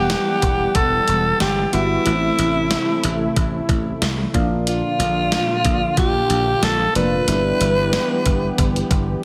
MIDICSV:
0, 0, Header, 1, 6, 480
1, 0, Start_track
1, 0, Tempo, 652174
1, 1515, Time_signature, 4, 2, 24, 8
1, 6801, End_track
2, 0, Start_track
2, 0, Title_t, "Alto saxophone"
2, 0, Program_c, 0, 65
2, 0, Note_on_c, 0, 67, 96
2, 551, Note_on_c, 0, 69, 97
2, 562, Note_off_c, 0, 67, 0
2, 1033, Note_off_c, 0, 69, 0
2, 1037, Note_on_c, 0, 67, 93
2, 1276, Note_on_c, 0, 64, 84
2, 1287, Note_off_c, 0, 67, 0
2, 2715, Note_off_c, 0, 64, 0
2, 3449, Note_on_c, 0, 65, 88
2, 4372, Note_off_c, 0, 65, 0
2, 4408, Note_on_c, 0, 67, 92
2, 4884, Note_on_c, 0, 69, 94
2, 4895, Note_off_c, 0, 67, 0
2, 5119, Note_off_c, 0, 69, 0
2, 5122, Note_on_c, 0, 71, 95
2, 6529, Note_off_c, 0, 71, 0
2, 6801, End_track
3, 0, Start_track
3, 0, Title_t, "Synth keys"
3, 0, Program_c, 1, 88
3, 0, Control_c, 1, 64, 127
3, 0, Note_on_c, 1, 55, 66
3, 0, Note_on_c, 1, 59, 59
3, 0, Note_on_c, 1, 64, 60
3, 0, Note_on_c, 1, 78, 73
3, 209, Note_off_c, 1, 59, 0
3, 209, Note_off_c, 1, 64, 0
3, 212, Note_off_c, 1, 78, 0
3, 231, Note_off_c, 1, 55, 0
3, 1271, Note_on_c, 1, 55, 66
3, 1274, Note_on_c, 1, 59, 58
3, 1277, Note_on_c, 1, 64, 60
3, 1282, Note_on_c, 1, 66, 74
3, 1432, Note_off_c, 1, 55, 0
3, 1434, Note_off_c, 1, 59, 0
3, 1435, Note_off_c, 1, 64, 0
3, 1438, Note_off_c, 1, 66, 0
3, 1513, Note_on_c, 1, 52, 64
3, 1515, Note_on_c, 1, 57, 61
3, 1518, Note_on_c, 1, 59, 49
3, 1521, Note_on_c, 1, 64, 76
3, 1523, Control_c, 1, 64, 0
3, 1566, Note_on_c, 1, 60, 60
3, 1569, Note_off_c, 1, 59, 0
3, 1645, Control_c, 1, 64, 127
3, 2128, Note_off_c, 1, 52, 0
3, 2129, Note_off_c, 1, 57, 0
3, 2132, Note_off_c, 1, 64, 0
3, 2154, Note_off_c, 1, 60, 0
3, 3191, Note_on_c, 1, 53, 85
3, 3194, Note_on_c, 1, 58, 76
3, 3197, Note_on_c, 1, 62, 75
3, 3200, Note_on_c, 1, 65, 92
3, 3205, Control_c, 1, 64, 0
3, 3325, Control_c, 1, 64, 127
3, 3965, Note_off_c, 1, 53, 0
3, 3967, Note_off_c, 1, 58, 0
3, 3969, Note_off_c, 1, 62, 0
3, 3970, Note_off_c, 1, 65, 0
3, 5114, Note_on_c, 1, 53, 70
3, 5118, Note_on_c, 1, 58, 61
3, 5120, Note_on_c, 1, 62, 61
3, 5122, Note_on_c, 1, 65, 75
3, 5274, Note_off_c, 1, 53, 0
3, 5276, Note_off_c, 1, 58, 0
3, 5277, Note_off_c, 1, 62, 0
3, 5278, Note_off_c, 1, 65, 0
3, 5355, Note_on_c, 1, 55, 69
3, 5359, Note_on_c, 1, 59, 59
3, 5360, Note_on_c, 1, 62, 63
3, 5362, Control_c, 1, 64, 0
3, 5364, Note_on_c, 1, 64, 71
3, 5475, Control_c, 1, 64, 127
3, 5969, Note_off_c, 1, 55, 0
3, 5971, Note_off_c, 1, 59, 0
3, 5972, Note_off_c, 1, 62, 0
3, 5973, Note_off_c, 1, 64, 0
3, 6801, End_track
4, 0, Start_track
4, 0, Title_t, "Analog synth pad"
4, 0, Program_c, 2, 89
4, 0, Note_on_c, 2, 52, 70
4, 0, Note_on_c, 2, 55, 71
4, 0, Note_on_c, 2, 78, 78
4, 1493, Note_off_c, 2, 52, 0
4, 1493, Note_off_c, 2, 55, 0
4, 1494, Note_off_c, 2, 78, 0
4, 1513, Note_on_c, 2, 48, 75
4, 1513, Note_on_c, 2, 64, 83
4, 1514, Note_on_c, 2, 57, 67
4, 3177, Note_off_c, 2, 48, 0
4, 3177, Note_off_c, 2, 57, 0
4, 3177, Note_off_c, 2, 64, 0
4, 3194, Note_on_c, 2, 50, 79
4, 3195, Note_on_c, 2, 65, 87
4, 3196, Note_on_c, 2, 46, 75
4, 5333, Note_off_c, 2, 50, 0
4, 5333, Note_off_c, 2, 65, 0
4, 5334, Note_off_c, 2, 46, 0
4, 5360, Note_on_c, 2, 67, 86
4, 5361, Note_on_c, 2, 52, 77
4, 5361, Note_on_c, 2, 59, 71
4, 6801, Note_off_c, 2, 52, 0
4, 6801, Note_off_c, 2, 59, 0
4, 6801, Note_off_c, 2, 67, 0
4, 6801, End_track
5, 0, Start_track
5, 0, Title_t, "Slap bass"
5, 0, Program_c, 3, 36
5, 0, Note_on_c, 3, 28, 80
5, 102, Note_off_c, 3, 28, 0
5, 314, Note_on_c, 3, 28, 90
5, 487, Note_off_c, 3, 28, 0
5, 554, Note_on_c, 3, 28, 97
5, 727, Note_off_c, 3, 28, 0
5, 798, Note_on_c, 3, 28, 85
5, 969, Note_off_c, 3, 28, 0
5, 1037, Note_on_c, 3, 31, 88
5, 1209, Note_off_c, 3, 31, 0
5, 1277, Note_on_c, 3, 31, 74
5, 1449, Note_off_c, 3, 31, 0
5, 1517, Note_on_c, 3, 33, 89
5, 1689, Note_off_c, 3, 33, 0
5, 1757, Note_on_c, 3, 33, 86
5, 2024, Note_off_c, 3, 33, 0
5, 2239, Note_on_c, 3, 33, 95
5, 2410, Note_off_c, 3, 33, 0
5, 2476, Note_on_c, 3, 33, 100
5, 2648, Note_off_c, 3, 33, 0
5, 2715, Note_on_c, 3, 33, 88
5, 2887, Note_off_c, 3, 33, 0
5, 2957, Note_on_c, 3, 36, 83
5, 3129, Note_off_c, 3, 36, 0
5, 3198, Note_on_c, 3, 34, 82
5, 3542, Note_off_c, 3, 34, 0
5, 3674, Note_on_c, 3, 34, 93
5, 3942, Note_off_c, 3, 34, 0
5, 4158, Note_on_c, 3, 34, 89
5, 4330, Note_off_c, 3, 34, 0
5, 4397, Note_on_c, 3, 34, 106
5, 4569, Note_off_c, 3, 34, 0
5, 4636, Note_on_c, 3, 34, 85
5, 4808, Note_off_c, 3, 34, 0
5, 4875, Note_on_c, 3, 34, 82
5, 5048, Note_off_c, 3, 34, 0
5, 5116, Note_on_c, 3, 29, 77
5, 5288, Note_off_c, 3, 29, 0
5, 5354, Note_on_c, 3, 31, 91
5, 5527, Note_off_c, 3, 31, 0
5, 5597, Note_on_c, 3, 31, 90
5, 5864, Note_off_c, 3, 31, 0
5, 6078, Note_on_c, 3, 31, 92
5, 6250, Note_off_c, 3, 31, 0
5, 6318, Note_on_c, 3, 31, 99
5, 6490, Note_off_c, 3, 31, 0
5, 6557, Note_on_c, 3, 31, 85
5, 6729, Note_off_c, 3, 31, 0
5, 6801, End_track
6, 0, Start_track
6, 0, Title_t, "Drums"
6, 72, Note_on_c, 9, 38, 105
6, 73, Note_on_c, 9, 42, 93
6, 146, Note_off_c, 9, 38, 0
6, 147, Note_off_c, 9, 42, 0
6, 312, Note_on_c, 9, 42, 74
6, 314, Note_on_c, 9, 36, 79
6, 385, Note_off_c, 9, 42, 0
6, 388, Note_off_c, 9, 36, 0
6, 551, Note_on_c, 9, 42, 77
6, 553, Note_on_c, 9, 36, 77
6, 624, Note_off_c, 9, 42, 0
6, 627, Note_off_c, 9, 36, 0
6, 792, Note_on_c, 9, 42, 60
6, 865, Note_off_c, 9, 42, 0
6, 1033, Note_on_c, 9, 38, 106
6, 1034, Note_on_c, 9, 42, 71
6, 1106, Note_off_c, 9, 38, 0
6, 1107, Note_off_c, 9, 42, 0
6, 1273, Note_on_c, 9, 42, 66
6, 1347, Note_off_c, 9, 42, 0
6, 1513, Note_on_c, 9, 42, 93
6, 1587, Note_off_c, 9, 42, 0
6, 1756, Note_on_c, 9, 42, 72
6, 1830, Note_off_c, 9, 42, 0
6, 1992, Note_on_c, 9, 38, 102
6, 1993, Note_on_c, 9, 42, 92
6, 2066, Note_off_c, 9, 38, 0
6, 2066, Note_off_c, 9, 42, 0
6, 2234, Note_on_c, 9, 42, 76
6, 2308, Note_off_c, 9, 42, 0
6, 2476, Note_on_c, 9, 36, 79
6, 2476, Note_on_c, 9, 42, 75
6, 2550, Note_off_c, 9, 36, 0
6, 2550, Note_off_c, 9, 42, 0
6, 2715, Note_on_c, 9, 36, 92
6, 2717, Note_on_c, 9, 42, 59
6, 2789, Note_off_c, 9, 36, 0
6, 2791, Note_off_c, 9, 42, 0
6, 2958, Note_on_c, 9, 38, 102
6, 2959, Note_on_c, 9, 42, 69
6, 3031, Note_off_c, 9, 38, 0
6, 3033, Note_off_c, 9, 42, 0
6, 3196, Note_on_c, 9, 36, 100
6, 3198, Note_on_c, 9, 42, 70
6, 3270, Note_off_c, 9, 36, 0
6, 3272, Note_off_c, 9, 42, 0
6, 3437, Note_on_c, 9, 42, 92
6, 3511, Note_off_c, 9, 42, 0
6, 3679, Note_on_c, 9, 42, 73
6, 3753, Note_off_c, 9, 42, 0
6, 3915, Note_on_c, 9, 38, 101
6, 3916, Note_on_c, 9, 42, 88
6, 3989, Note_off_c, 9, 38, 0
6, 3990, Note_off_c, 9, 42, 0
6, 4155, Note_on_c, 9, 42, 74
6, 4157, Note_on_c, 9, 36, 76
6, 4229, Note_off_c, 9, 42, 0
6, 4231, Note_off_c, 9, 36, 0
6, 4395, Note_on_c, 9, 42, 78
6, 4396, Note_on_c, 9, 36, 77
6, 4469, Note_off_c, 9, 42, 0
6, 4470, Note_off_c, 9, 36, 0
6, 4636, Note_on_c, 9, 42, 61
6, 4710, Note_off_c, 9, 42, 0
6, 4878, Note_on_c, 9, 38, 104
6, 4879, Note_on_c, 9, 42, 77
6, 4951, Note_off_c, 9, 38, 0
6, 4952, Note_off_c, 9, 42, 0
6, 5118, Note_on_c, 9, 42, 71
6, 5192, Note_off_c, 9, 42, 0
6, 5357, Note_on_c, 9, 42, 95
6, 5430, Note_off_c, 9, 42, 0
6, 5598, Note_on_c, 9, 42, 77
6, 5672, Note_off_c, 9, 42, 0
6, 5836, Note_on_c, 9, 38, 100
6, 5837, Note_on_c, 9, 42, 93
6, 5909, Note_off_c, 9, 38, 0
6, 5910, Note_off_c, 9, 42, 0
6, 6076, Note_on_c, 9, 42, 76
6, 6078, Note_on_c, 9, 36, 76
6, 6150, Note_off_c, 9, 42, 0
6, 6152, Note_off_c, 9, 36, 0
6, 6317, Note_on_c, 9, 42, 77
6, 6318, Note_on_c, 9, 36, 82
6, 6391, Note_off_c, 9, 36, 0
6, 6391, Note_off_c, 9, 42, 0
6, 6449, Note_on_c, 9, 42, 46
6, 6522, Note_off_c, 9, 42, 0
6, 6555, Note_on_c, 9, 36, 94
6, 6557, Note_on_c, 9, 42, 61
6, 6629, Note_off_c, 9, 36, 0
6, 6630, Note_off_c, 9, 42, 0
6, 6801, End_track
0, 0, End_of_file